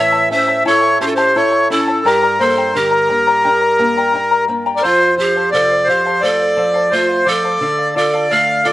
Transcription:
Already playing: nylon-string guitar A2 E3, charango E4 A4 E5 A5, pan flute C#5, accordion E5
0.12 charango E4 A4 A5
0.30 nylon-string guitar C#4, charango E4 A4 E5 A5, pan flute C5, accordion E5
0.48 charango E4 A4 C#5 E5 A5
0.65 charango E4 A4 C#5 E5 A5, nylon-string guitar E4, pan flute A4, accordion C#5
0.82 charango E4 A4 A5
1.00 nylon-string guitar C#4, charango E4 A4 E5 A5, pan flute G4, accordion C5
1.07 pan flute F4, accordion A4
1.15 charango E4 A4 C#5 E5 A5, pan flute G4, accordion C5
1.35 charango E4 A4 E5 A5, nylon-string guitar E4, pan flute A4, accordion C#5
1.52 charango E4 A4 A5
1.70 nylon-string guitar C#4, charango E4 A4 E5 A5, pan flute E4, accordion A4
1.88 charango E4 A4 C#5 E5 A5
2.05 nylon-string guitar G2, charango G4 A#4 D5 G5 A#5, pan flute G4, accordion A#4
2.23 charango A#4 D5 A#5
2.39 nylon-string guitar A#3, pan flute A4, charango A#4 D5 G5 A#5, accordion C5
2.57 charango G4 A#4 D5 G5 A#5
2.74 nylon-string guitar D3, pan flute G4, charango A#4 D5 G5 A#5, accordion A#4
2.91 charango A#4 D5 A#5
3.08 nylon-string guitar A#3, charango A#4 D5 G5 A#5
3.27 charango G4 A#4 D5 G5 A#5
3.44 nylon-string guitar D4, charango G4 A#4 D5 G5 A#5
3.61 charango A#4 D5 A#5
3.79 nylon-string guitar A#3, charango A#4 D5 G5 A#5
3.97 charango G4 A#4 D5 G5 A#5
4.14 nylon-string guitar D4, charango A#4 D5 G5 A#5
4.31 charango A#4 D5 A#5
4.48 nylon-string guitar A#3, charango A#4 D5 G5 A#5
4.66 charango G4 A#4 D5 G5 A#5
4.76 pan flute A#4, accordion D5
4.83 nylon-string guitar F2, pan flute F4, charango A4 C5 F5, accordion C5
5.01 charango F5
5.16 nylon-string guitar F3, pan flute G4, charango A4 C5 F5, accordion C5
5.36 charango A4 C5 F5
5.51 nylon-string guitar C3, charango A4 C5 F5, pan flute A4, accordion D5
5.70 charango C5 F5
5.84 nylon-string guitar F3, charango A4, accordion C5
5.88 pan flute G4, charango C5 F5
6.05 charango A4 C5 F5
6.21 nylon-string guitar A3, charango A4 C5 F5, pan flute A4, accordion D5
6.39 charango C5 F5
6.57 nylon-string guitar F3, charango A4 C5 F5
6.74 charango A4 C5 F5
6.91 nylon-string guitar A3, pan flute F4, charango A4 C5 F5, accordion C5
7.08 charango C5 F5
7.26 nylon-string guitar F3, charango A4 C5 F5, pan flute A4, accordion D5
7.44 charango A4 C5 F5
7.61 nylon-string guitar D3, charango A4 D5 F5
7.78 charango D5 F5
7.95 nylon-string guitar F4, charango A4 D5 F5, pan flute A4, accordion D5
8.14 charango A4 D5 F5
8.30 nylon-string guitar A3, charango A4 D5 F5, pan flute D5, accordion F5
8.48 charango D5 F5
8.65 nylon-string guitar F4, pan flute A4, charango A4 D5 F5, accordion D5

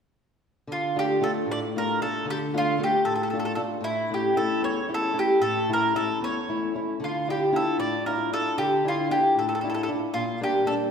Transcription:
0.67 nylon-string guitar D3
0.72 mandolin F4
0.96 nylon-string guitar A3 D4 F4, mandolin G4
1.21 nylon-string guitar A3 D4 F4, mandolin A4
1.46 nylon-string guitar A2
1.51 mandolin D5
1.76 nylon-string guitar A3 D4 F4, mandolin A#4
2.02 nylon-string guitar A3 D4 F4, mandolin A4
2.25 nylon-string guitar D3
2.30 mandolin G4
2.54 nylon-string guitar A3 D4 F4, mandolin F4
2.79 nylon-string guitar A3 D4 F4
2.84 mandolin G4
3.05 nylon-string guitar A2, mandolin A4
3.15 mandolin A4
3.23 mandolin A4
3.30 nylon-string guitar A3 D4 F4, mandolin A4
3.40 mandolin A4
3.45 mandolin A4
3.55 nylon-string guitar A3 D4 F4, mandolin A4
3.81 nylon-string guitar A2, mandolin E4
4.11 nylon-string guitar A3 C#4 E4, mandolin G4
4.36 nylon-string guitar A3 C#4 E4, mandolin A4
4.61 nylon-string guitar E2, mandolin C#5
4.88 nylon-string guitar A3 C#4 E4
4.94 mandolin A4
5.14 nylon-string guitar A3 C#4 E4
5.19 mandolin G4
5.40 nylon-string guitar A2, mandolin A4
5.69 nylon-string guitar A3 C#4 E4
5.73 mandolin A#4
5.95 nylon-string guitar A3 C#4 E4, mandolin A4
6.20 nylon-string guitar E2, mandolin C#5
6.49 nylon-string guitar A3 C#4 E4
6.74 nylon-string guitar A3 C#4 E4
7.00 nylon-string guitar D3
7.04 mandolin F4
7.28 nylon-string guitar D4 E4 F4, mandolin G4
7.53 nylon-string guitar D4 E4 F4, mandolin A4
7.78 nylon-string guitar A2, mandolin D5
8.06 nylon-string guitar D4 E4 F4, mandolin A#4
8.32 nylon-string guitar D4 E4 F4, mandolin A4
8.58 nylon-string guitar D3, mandolin G4
8.84 nylon-string guitar D4 E4 F4, mandolin F4
9.10 nylon-string guitar D4 E4 F4, mandolin G4
9.36 nylon-string guitar A2, mandolin A4
9.49 mandolin A4
9.55 mandolin A4
9.61 nylon-string guitar D4 E4 F4, mandolin A4
9.70 mandolin A4
9.74 mandolin A4
9.83 mandolin A4
9.88 nylon-string guitar D4 E4 F4
10.14 nylon-string guitar A#2, mandolin F4
10.41 nylon-string guitar G3 A#3 D4, mandolin G4
10.65 nylon-string guitar G3 A#3 D4, mandolin A4

